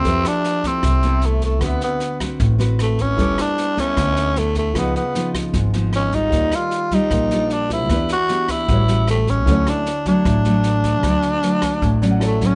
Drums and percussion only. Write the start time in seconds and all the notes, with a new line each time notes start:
0.04 kick, snare
0.25 cross-stick, snare
0.44 snare
0.64 kick, snare
0.83 kick, cross-stick, snare
1.03 snare
1.22 snare
1.42 kick, snare
1.61 kick, cross-stick, snare
1.81 snare
2.00 snare
2.20 kick, cross-stick, snare
2.40 kick, snare
2.60 snare
2.79 cross-stick, snare
2.99 kick, snare
3.18 kick, snare
3.38 cross-stick, snare
3.58 snare
3.77 kick, snare
3.97 kick, cross-stick, snare
4.17 snare
4.36 snare
4.55 kick, snare
4.75 kick, cross-stick, snare
4.96 snare
5.15 snare
5.34 kick, cross-stick, snare
5.53 kick, snare
5.74 snare
5.93 cross-stick, snare
6.12 kick, snare
6.32 kick, snare
6.52 cross-stick, snare
6.71 snare
6.91 kick, snare
7.11 kick, cross-stick, snare
7.31 snare
7.50 snare
7.70 kick, snare
7.89 kick, cross-stick, snare
8.09 snare
8.29 snare
8.48 kick, cross-stick, snare
8.68 kick, snare
8.88 snare
9.07 cross-stick, snare
9.27 kick, snare
9.47 kick, snare
9.67 cross-stick, snare
9.86 snare
10.06 kick, snare
10.25 kick, cross-stick, snare
10.45 snare
10.63 snare
10.84 kick, snare
11.03 kick, cross-stick, snare
11.22 snare
11.43 snare
11.62 kick, cross-stick, snare
11.82 kick, snare
12.02 snare
12.21 cross-stick, snare
12.41 kick, snare